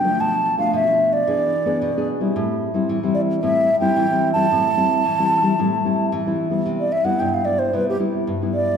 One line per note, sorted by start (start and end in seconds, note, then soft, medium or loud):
0.00 0.17 D3 medium
0.00 0.22 G5 medium
0.05 0.55 F3 medium
0.05 0.55 A3 medium
0.05 0.56 D4 medium
0.20 0.71 B2 medium
0.20 0.58 A5 medium
0.58 0.82 F3 medium
0.58 0.82 A3 medium
0.58 0.82 D4 medium
0.58 0.72 F5 medium
0.73 1.25 B2 medium
0.73 1.14 E5 medium
0.88 1.24 F3 medium
0.88 1.24 A3 medium
0.88 1.24 D4 medium
1.13 2.08 D5 medium
1.27 1.79 E3 medium
1.27 1.53 B3 medium
1.27 1.53 D4 medium
1.27 1.53 G#4 medium
1.66 1.89 B3 medium
1.66 1.90 D4 medium
1.66 1.90 G#4 medium
1.82 2.33 B2 medium
1.97 2.19 B3 medium
1.97 2.19 D4 medium
1.97 2.19 G#4 medium
2.21 2.71 G3 medium
2.21 2.71 C4 medium
2.21 2.71 E4 medium
2.36 2.87 A2 medium
2.74 2.97 G3 medium
2.74 2.98 C4 medium
2.74 2.98 E4 medium
2.89 3.40 E3 medium
3.03 3.39 G3 medium
3.03 3.39 C4 medium
3.03 3.39 E4 medium
3.14 3.21 D5 medium
3.42 3.94 A2 medium
3.42 3.68 G3 medium
3.42 3.68 C4 medium
3.42 3.69 E4 medium
3.42 3.79 E5 medium
3.80 4.05 G3 medium
3.80 4.05 C4 medium
3.80 4.05 E4 medium
3.80 4.32 G5 medium
3.96 4.48 E3 medium
4.11 4.33 G3 medium
4.11 4.34 C4 medium
4.11 4.34 E4 medium
4.33 4.45 G3 medium
4.33 4.45 C4 medium
4.33 4.46 E4 medium
4.33 6.06 A5 loud
4.51 5.02 A2 medium
4.51 4.67 G3 medium
4.51 4.67 C4 medium
4.51 4.67 E4 medium
4.77 5.03 G3 medium
4.77 5.03 C4 medium
4.77 5.03 E4 medium
5.05 5.56 E3 medium
5.19 5.41 G3 medium
5.19 5.41 C4 medium
5.19 5.42 E4 medium
5.43 5.53 G3 medium
5.43 5.53 C4 medium
5.43 5.53 E4 medium
5.59 6.10 A2 medium
5.59 5.75 G3 medium
5.59 5.75 C4 medium
5.59 5.75 E4 medium
5.84 6.21 G3 medium
5.84 6.21 C4 medium
5.84 6.21 E4 medium
6.12 6.63 E3 medium
6.26 6.49 G3 soft
6.26 6.49 C4 medium
6.26 6.49 E4 medium
6.50 6.88 G3 medium
6.50 6.88 B3 medium
6.50 6.88 E4 medium
6.66 7.17 C3 medium
6.80 6.94 D5 medium
6.92 7.06 E5 medium
7.04 7.42 G3 medium
7.04 7.42 B3 medium
7.04 7.42 E4 medium
7.04 7.21 F#5 medium
7.20 7.71 G2 medium
7.20 7.35 G5 medium
7.34 7.47 F5 medium
7.45 7.69 G3 medium
7.45 7.69 B3 medium
7.45 7.69 E4 medium
7.45 7.60 D5 medium
7.59 7.76 C5 medium
7.73 8.25 C3 medium
7.73 7.96 G3 medium
7.73 7.96 B3 medium
7.73 7.97 E4 medium
7.73 7.88 B4 medium
7.89 7.97 G4 medium
7.99 8.36 G3 medium
7.99 8.36 B3 medium
7.99 8.36 E4 medium
8.27 8.77 G2 medium
8.42 8.77 G3 medium
8.42 8.77 B3 medium
8.42 8.77 E4 medium
8.54 8.77 D5 medium